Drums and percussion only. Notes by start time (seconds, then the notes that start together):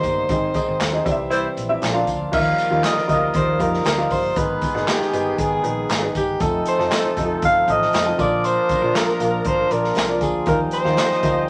0.03 kick, closed hi-hat, tambourine
0.29 kick, closed hi-hat, tambourine
0.54 kick, closed hi-hat, tambourine
0.80 snare, clap, closed hi-hat, tambourine
1.06 kick, closed hi-hat, tambourine
1.31 closed hi-hat, tambourine
1.57 closed hi-hat, tambourine
1.82 snare, clap, closed hi-hat, tambourine
2.07 kick, closed hi-hat, tambourine
2.33 kick, crash, tambourine
2.58 closed hi-hat, tambourine
2.84 snare, clap, closed hi-hat, tambourine
2.97 snare
3.09 kick, closed hi-hat, tambourine
3.34 kick, closed hi-hat, tambourine
3.59 kick, closed hi-hat, tambourine
3.73 snare
3.84 snare, clap, closed hi-hat, tambourine
4.10 kick, open hi-hat, tambourine
4.36 kick, closed hi-hat, tambourine
4.61 kick, closed hi-hat, tambourine
4.76 snare
4.88 snare, clap, closed hi-hat, tambourine
5.02 snare
5.13 closed hi-hat, tambourine
5.38 kick, closed hi-hat, tambourine
5.64 closed hi-hat
5.89 snare, clap, closed hi-hat, tambourine
6.15 kick, closed hi-hat, tambourine
6.40 kick, closed hi-hat, tambourine
6.65 closed hi-hat, tambourine
6.79 snare
6.91 snare, clap, closed hi-hat, tambourine
7.17 kick, closed hi-hat, tambourine
7.42 kick, closed hi-hat
7.68 kick, closed hi-hat
7.82 snare
7.93 snare, clap, closed hi-hat, tambourine
8.19 kick, closed hi-hat, tambourine
8.44 closed hi-hat, tambourine
8.69 kick, closed hi-hat, tambourine
8.95 snare, clap, closed hi-hat, tambourine
9.08 snare
9.20 closed hi-hat, tambourine
9.44 kick, closed hi-hat
9.71 closed hi-hat, tambourine
9.84 snare
9.95 snare, clap, closed hi-hat, tambourine
10.21 kick, closed hi-hat, tambourine
10.46 kick, closed hi-hat, tambourine
10.71 closed hi-hat, tambourine
10.85 snare
10.97 snare, clap, closed hi-hat, tambourine
11.11 snare
11.23 kick, closed hi-hat, tambourine